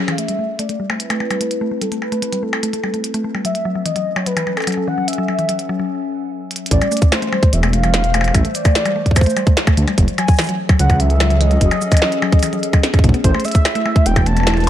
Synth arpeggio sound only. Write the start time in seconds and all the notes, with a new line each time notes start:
0.08 E3
0.18 A3
0.29 G3
0.39 A3
0.59 A3
0.69 A3
0.80 G3
0.90 A3
1.10 A3
1.20 A3
1.31 G3
1.41 A3
1.61 A3
1.71 A3
1.82 G3
1.92 A3
2.12 A3
2.22 A3
2.33 G3
2.43 A3
2.63 A3
2.73 A3
2.84 G3
2.94 A3
3.14 A3
3.24 A3
3.35 G3
3.45 F#3
3.65 F#3
3.75 F#3
3.86 E3
3.96 F#3
4.16 F#3
4.26 F#3
4.37 E3
4.47 F#3
4.67 F#3
4.77 F#3
4.88 E3
4.98 F#3
5.18 F#3
5.28 F#3
5.39 E3
5.49 F#3
5.69 F#3
5.79 F#3
6.71 A3
6.81 G3
6.92 A3
7.12 A3
7.22 A3
7.32 G3
7.43 A3
7.63 A3
7.73 A3
7.84 G3
7.94 A3
8.14 A3
8.24 A3
8.35 G3
8.45 A3
8.65 A3
8.75 A3
8.86 G3
8.96 A3
9.16 A3
9.26 A3
9.37 G3
9.47 A3
9.67 A3
9.77 A3
9.88 G3
9.98 F#3
10.18 F#3
10.28 F#3
10.39 E3
10.49 F#3
10.69 F#3
10.79 F#3
10.90 E3
11.00 F#3
11.20 F#3
11.30 F#3
11.41 E3
11.51 F#3
11.71 F#3
11.82 F#3
11.92 E3
12.02 F#3
12.22 F#3
12.33 F#3
12.43 E3
12.53 F#3
12.73 F#3
12.84 B3
12.94 C#3
13.04 A3
13.14 B3
13.24 A3
13.35 A3
13.45 A3
13.55 A3
13.75 A3
13.86 A3
13.96 A3
14.06 A3
14.26 A3
14.37 A3
14.47 A3
14.57 A3